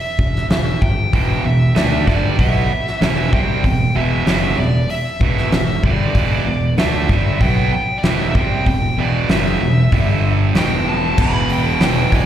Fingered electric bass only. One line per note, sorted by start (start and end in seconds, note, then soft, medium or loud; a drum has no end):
0.19 0.48 E1 medium
0.50 0.79 E1 medium
0.82 1.11 G1 medium
1.13 1.42 E1 medium
1.45 1.74 E1 medium
1.77 2.05 D2 medium
2.07 2.36 G1 medium
2.39 2.68 B1 medium
2.71 muted fingered electric bass stroke soft
3.02 3.31 E1 medium
3.33 3.62 C2 medium
3.64 3.93 E1 medium
3.95 4.24 E1 medium
4.26 4.56 F#1 medium
4.58 4.87 E1 medium
5.21 5.50 E1 loud
5.52 5.81 E1 medium
5.83 6.13 G1 medium
6.14 6.44 E1 medium
6.46 6.76 E1 medium
6.78 7.07 D2 medium
7.09 7.39 G1 medium
7.41 7.70 B1 medium
7.73 muted fingered electric bass stroke soft
8.04 8.33 E1 medium
8.35 8.64 C2 medium
8.66 8.96 E1 medium
8.98 9.27 E1 medium
9.29 9.59 F#1 medium
9.61 9.90 E1 medium
9.92 10.51 G1 medium
10.56 11.14 E1 medium
11.18 11.42 E1 loud
11.50 11.74 E1 medium
11.80 12.04 E1 loud
12.12 12.26 E1 medium